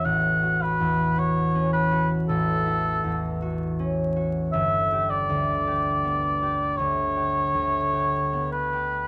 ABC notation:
X:1
M:4/4
L:1/8
Q:1/4=53
K:A
V:1 name="Oboe"
f B c B A2 z2 | e d3 c3 B |]
V:2 name="Harp"
(3[A,,,CF] F E,, (3F C F (3A,,, E E,, (3F C F | (3=G,,, =G D,, (3G B, G (3D,, G D,, (3G B, G |]